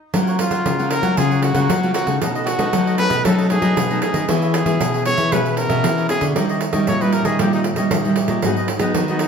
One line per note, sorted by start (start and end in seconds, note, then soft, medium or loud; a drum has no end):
0.13 0.63 F#3 medium
0.13 0.47 F#3 medium
0.13 0.36 A#3 medium
0.13 0.36 C#4 medium
0.13 0.26 F4 medium
0.13 0.36 F4 medium
0.13 0.26 A#4 medium
0.13 0.26 C#5 medium
0.13 0.26 F#5 medium
0.13 pandeiro medium
0.27 0.38 A#4 medium
0.27 0.38 C#5 medium
0.27 0.39 F#5 medium
0.27 pandeiro soft
0.38 0.74 A#3 medium
0.38 0.74 C#4 medium
0.38 0.75 F4 medium
0.38 0.92 F4 medium
0.38 muted cavaquinho stroke soft
0.38 pandeiro medium
0.51 0.63 F#3 medium
0.51 0.78 A#4 soft
0.51 0.77 C#5 medium
0.51 0.77 F#5 medium
0.51 pandeiro medium
0.66 0.99 C#3 medium
0.66 1.15 C#3 medium
0.66 pandeiro medium
0.79 1.01 A#3 medium
0.79 1.01 C#4 medium
0.79 1.01 F4 medium
0.79 0.90 A#4 soft
0.79 0.91 C#5 soft
0.79 0.91 F#5 medium
0.79 pandeiro soft
0.91 1.03 F4 medium
0.91 1.19 A#4 medium
0.91 1.04 A#4 soft
0.91 1.03 C#5 soft
0.91 1.02 F#5 medium
0.91 pandeiro medium
1.03 1.15 F#3 medium
1.03 1.13 A#3 medium
1.03 1.13 C#4 medium
1.03 1.13 F4 medium
1.03 1.17 A#4 medium
1.03 1.17 C#5 medium
1.03 1.16 F#5 medium
1.03 pandeiro medium
1.17 1.51 C#3 loud
1.17 1.67 F#3 medium
1.17 1.53 A#3 medium
1.17 1.53 C#4 medium
1.17 1.30 F4 medium
1.17 1.53 F4 medium
1.17 1.44 G#4 medium
1.17 1.30 A#4 medium
1.17 1.31 C#5 medium
1.17 1.30 F#5 medium
1.17 pandeiro medium
1.31 1.43 A#4 soft
1.31 1.43 C#5 soft
1.31 1.43 F#5 medium
1.31 pandeiro soft
1.42 1.93 F#4 medium
1.42 muted cavaquinho stroke soft
1.42 pandeiro medium
1.54 1.67 C#3 loud
1.54 1.78 A#3 medium
1.54 1.78 C#4 medium
1.54 1.78 F4 medium
1.54 1.82 A#4 medium
1.54 1.82 C#5 medium
1.54 1.81 F#5 medium
1.54 pandeiro medium
1.70 2.19 C#3 medium
1.70 1.92 F#3 medium
1.70 pandeiro medium
1.83 2.05 A#3 medium
1.83 2.05 C#4 medium
1.83 2.05 F4 medium
1.83 1.94 A#4 soft
1.83 1.95 C#5 soft
1.83 1.95 F#5 soft
1.83 pandeiro soft
1.94 2.07 F4 soft
1.94 2.19 F#4 medium
1.94 2.07 A#4 soft
1.94 2.07 C#5 medium
1.94 2.06 F#5 medium
1.94 pandeiro medium
2.07 2.19 C#3 medium
2.07 2.43 A3 medium
2.07 2.43 C#4 medium
2.07 2.43 D#4 medium
2.07 2.21 A#4 soft
2.07 2.20 C#5 soft
2.07 2.20 F#5 soft
2.07 pandeiro medium
2.21 2.71 B2 medium
2.21 2.55 B2 medium
2.21 2.34 D#4 medium
2.21 2.34 A4 medium
2.21 2.34 B4 medium
2.21 2.34 D#5 medium
2.21 pandeiro medium
2.35 2.46 A4 medium
2.35 2.47 B4 medium
2.35 2.47 D#5 medium
2.35 pandeiro soft
2.46 2.95 F#4 medium
2.46 muted cavaquinho stroke soft
2.46 pandeiro medium
2.58 2.68 A3 medium
2.58 2.71 B3 medium
2.58 2.69 C#4 medium
2.58 2.69 D#4 medium
2.58 2.86 A4 medium
2.58 2.85 B4 medium
2.58 2.85 D#5 medium
2.58 pandeiro medium
2.73 3.23 F#3 medium
2.73 3.07 F#3 medium
2.73 2.95 A3 medium
2.73 2.95 C#4 medium
2.73 2.96 D#4 medium
2.73 pandeiro medium
2.87 2.98 A4 soft
2.87 2.99 B4 soft
2.87 2.99 D#5 medium
2.87 pandeiro soft
2.98 3.21 A3 medium
2.98 3.21 C#4 medium
2.98 3.11 D#4 medium
2.98 3.21 D#4 medium
2.98 3.11 A4 medium
2.98 3.26 B4 loud
2.98 3.10 B4 soft
2.98 pandeiro medium
3.10 3.22 B2 medium
3.10 3.24 A4 medium
3.10 3.24 B4 medium
3.10 3.23 D#5 medium
3.10 pandeiro medium
3.25 3.75 B2 medium
3.25 3.58 F#3 loud
3.25 3.47 A3 medium
3.25 3.47 C#4 medium
3.25 3.37 D#4 medium
3.25 3.48 D#4 medium
3.25 3.49 A4 medium
3.25 3.37 A4 medium
3.25 3.38 B4 medium
3.25 3.37 D#5 medium
3.25 pandeiro medium
3.38 3.49 A4 soft
3.38 3.49 B4 soft
3.38 3.50 D#5 soft
3.38 pandeiro soft
3.50 3.75 A3 medium
3.50 3.76 C#4 medium
3.50 3.76 D#4 medium
3.50 3.99 G#4 medium
3.50 muted cavaquinho stroke soft
3.50 pandeiro medium
3.62 3.74 F#3 medium
3.62 3.89 A4 medium
3.62 3.88 B4 medium
3.62 3.88 D#5 medium
3.62 pandeiro medium
3.77 3.99 B2 medium
3.77 4.26 F#3 medium
3.77 pandeiro medium
3.90 4.25 A3 medium
3.90 4.25 C#4 medium
3.90 4.25 D#4 medium
3.90 4.02 A4 soft
3.90 4.02 B4 soft
3.90 4.02 D#5 soft
3.90 pandeiro soft
4.02 4.15 D#4 medium
4.02 4.27 G#4 medium
4.02 4.15 A4 medium
4.02 4.14 B4 soft
4.02 4.13 D#5 medium
4.02 pandeiro medium
4.14 4.26 D#3 medium
4.14 4.28 A4 soft
4.14 4.28 B4 soft
4.14 4.27 D#5 medium
4.14 pandeiro medium
4.28 4.78 E3 medium
4.28 4.62 E3 medium
4.28 4.53 B3 medium
4.28 4.53 C#4 medium
4.28 4.41 E4 medium
4.28 4.54 G#4 medium
4.28 4.41 G#4 medium
4.28 4.42 C#5 medium
4.28 4.41 E5 medium
4.28 pandeiro medium
4.42 4.53 G#4 medium
4.42 4.53 C#5 medium
4.42 4.54 E5 medium
4.42 pandeiro soft
4.53 5.02 G#4 medium
4.53 muted cavaquinho stroke soft
4.53 pandeiro medium
4.65 4.78 E3 medium
4.65 5.02 B3 medium
4.65 5.02 C#4 medium
4.65 5.02 G#4 medium
4.65 4.93 G#4 medium
4.65 4.92 C#5 medium
4.65 4.92 E5 medium
4.65 pandeiro medium
4.81 5.14 B2 medium
4.81 5.30 B2 medium
4.81 pandeiro medium
4.94 5.05 G#4 medium
4.94 5.06 C#5 medium
4.94 5.06 E5 medium
4.94 pandeiro soft
5.06 5.22 B3 medium
5.06 5.22 C#4 medium
5.06 5.18 E4 medium
5.06 5.18 G#4 soft
5.06 5.22 G#4 medium
5.06 5.34 C#5 loud
5.06 5.17 C#5 soft
5.06 5.16 E5 medium
5.06 pandeiro medium
5.17 5.30 E3 medium
5.17 5.31 G#4 medium
5.17 5.31 C#5 medium
5.17 5.30 E5 medium
5.17 pandeiro medium
5.32 5.66 B2 loud
5.32 5.82 E3 medium
5.32 5.67 B3 medium
5.32 5.68 C#4 medium
5.32 5.44 E4 medium
5.32 5.45 G#4 medium
5.32 5.68 G#4 medium
5.32 5.56 B4 medium
5.32 5.45 C#5 medium
5.32 5.44 E5 medium
5.32 pandeiro medium
5.45 5.56 G#4 soft
5.45 5.57 C#5 soft
5.45 5.57 E5 medium
5.45 pandeiro soft
5.57 6.06 A#4 medium
5.57 muted cavaquinho stroke soft
5.57 pandeiro medium
5.69 5.82 B2 loud
5.69 6.05 B3 medium
5.69 6.06 C#4 medium
5.69 6.06 G#4 medium
5.69 5.96 G#4 medium
5.69 5.96 C#5 medium
5.69 5.95 E5 medium
5.69 pandeiro medium
5.84 6.34 B2 medium
5.84 6.07 E3 medium
5.84 pandeiro medium
5.98 6.08 G#4 soft
5.98 6.09 C#5 soft
5.98 6.10 E5 medium
5.98 pandeiro soft
6.09 6.32 B3 medium
6.09 6.32 C#4 medium
6.09 6.21 E4 medium
6.09 6.25 G#4 medium
6.09 6.22 G#4 medium
6.09 6.32 G#4 medium
6.09 6.21 C#5 medium
6.09 6.20 E5 medium
6.09 pandeiro medium
6.21 6.33 D3 medium
6.21 6.35 G#4 soft
6.21 6.35 C#5 soft
6.21 6.34 E5 medium
6.21 pandeiro medium
6.36 6.85 D#3 medium
6.36 6.69 D#3 medium
6.36 6.60 G3 medium
6.36 6.61 C#4 medium
6.36 6.48 D#4 medium
6.36 6.61 E4 medium
6.36 6.48 G4 medium
6.36 6.49 C#5 medium
6.36 6.48 D#5 medium
6.36 pandeiro medium
6.49 6.60 G4 medium
6.49 6.60 C#5 medium
6.49 6.60 D#5 medium
6.49 pandeiro soft
6.61 muted cavaquinho stroke soft
6.61 pandeiro medium
6.73 6.85 D#3 medium
6.73 6.96 G3 medium
6.73 6.96 C#4 medium
6.73 6.96 E4 medium
6.73 7.00 G4 medium
6.73 6.99 C#5 medium
6.73 6.99 D#5 medium
6.73 pandeiro medium
6.87 7.21 A#2 medium
6.87 7.37 A#2 medium
6.87 7.03 C#5 medium
6.87 pandeiro medium
7.00 7.36 G3 medium
7.00 7.36 C#4 medium
7.00 7.36 E4 medium
7.00 7.12 G4 soft
7.00 7.15 B4 medium
7.00 7.12 C#5 soft
7.00 7.13 D#5 medium
7.00 pandeiro soft
7.12 7.25 D#4 medium
7.12 7.25 G4 soft
7.12 7.27 A#4 medium
7.12 7.25 C#5 medium
7.12 7.24 D#5 medium
7.12 pandeiro medium
7.25 7.37 D#3 medium
7.25 7.39 G4 medium
7.25 7.42 G#4 medium
7.25 7.38 C#5 medium
7.25 7.38 D#5 medium
7.25 pandeiro medium
7.39 7.73 A#2 loud
7.39 7.89 D#3 medium
7.39 7.64 G3 medium
7.39 7.64 C#4 medium
7.39 7.51 D#4 medium
7.39 7.65 E4 medium
7.39 7.52 G4 medium
7.39 7.53 G4 medium
7.39 7.52 C#5 medium
7.39 7.52 D#5 medium
7.39 pandeiro medium
7.53 7.61 D#4 medium
7.53 7.64 G4 soft
7.53 7.64 C#5 soft
7.53 7.64 D#5 medium
7.53 pandeiro soft
7.64 muted cavaquinho stroke soft
7.64 pandeiro medium
7.76 7.89 A#2 medium
7.76 8.00 G3 medium
7.76 8.00 C#4 medium
7.76 8.00 E4 medium
7.76 8.04 G4 medium
7.76 8.03 C#5 medium
7.76 8.03 D#5 medium
7.76 pandeiro medium
7.91 8.41 A#2 medium
7.91 8.13 D#3 medium
7.91 pandeiro medium
8.05 8.40 G3 medium
8.05 8.40 C#4 medium
8.05 8.40 E4 medium
8.05 8.16 G4 soft
8.05 8.17 C#5 soft
8.05 8.17 D#5 soft
8.05 pandeiro soft
8.16 8.29 D#4 medium
8.16 8.29 G4 soft
8.16 8.29 C#5 soft
8.16 8.28 D#5 medium
8.16 pandeiro medium
8.28 8.40 A#2 medium
8.28 8.42 G4 soft
8.28 8.42 C#5 soft
8.28 8.41 D#5 soft
8.28 pandeiro medium
8.42 8.76 G#2 medium
8.42 8.93 G#2 medium
8.42 8.68 F#3 medium
8.42 8.68 B3 medium
8.42 8.68 D#4 medium
8.42 8.55 F#4 medium
8.42 8.56 G#4 medium
8.42 8.56 B4 medium
8.42 8.56 D#5 medium
8.42 pandeiro medium
8.57 8.68 G#4 medium
8.57 8.68 B4 medium
8.57 8.68 D#5 medium
8.57 pandeiro soft
8.68 muted cavaquinho stroke soft
8.68 pandeiro medium
8.79 9.03 F#3 medium
8.79 8.92 G#3 medium
8.79 9.03 B3 medium
8.79 9.04 D#4 medium
8.79 9.07 G#4 soft
8.79 9.07 B4 medium
8.79 9.06 D#5 medium
8.79 pandeiro medium
8.94 9.28 D#3 medium
8.94 pandeiro medium
9.08 9.28 F#3 medium
9.08 9.21 B3 medium
9.08 9.28 B3 medium
9.08 9.28 D#4 medium
9.08 9.20 G#4 soft
9.08 9.21 B4 soft
9.08 9.20 D#5 medium
9.08 pandeiro soft
9.19 9.28 D#4 medium
9.19 9.28 F#4 soft
9.19 9.28 G#4 soft
9.19 9.28 B4 medium
9.19 9.28 D#5 medium
9.19 pandeiro medium